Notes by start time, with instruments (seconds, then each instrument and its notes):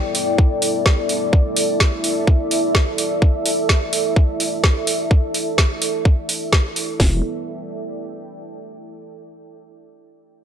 Already playing: analog synth pad G3 B3 E4 E5, ambient pad E4 A4 D5 E5
0.15 open hi-hat
0.38 kick
0.62 open hi-hat
0.86 kick, snare
1.09 open hi-hat
1.33 kick
1.56 open hi-hat
1.80 kick, snare
2.04 open hi-hat
2.27 kick
2.51 open hi-hat
2.75 kick, snare
2.98 open hi-hat
3.22 kick
3.46 open hi-hat
3.69 kick, snare
3.93 open hi-hat
4.16 kick
4.40 open hi-hat
4.64 kick, snare
4.87 open hi-hat
5.11 kick
5.34 open hi-hat
5.58 kick, snare
5.82 open hi-hat
6.05 kick
6.29 open hi-hat
6.53 kick, snare
6.76 open hi-hat
7.00 wobble bass E1, ambient pad E4, kick, snare, open hi-hat
7.08 ambient pad A4
7.16 ambient pad D5
7.22 ambient pad G5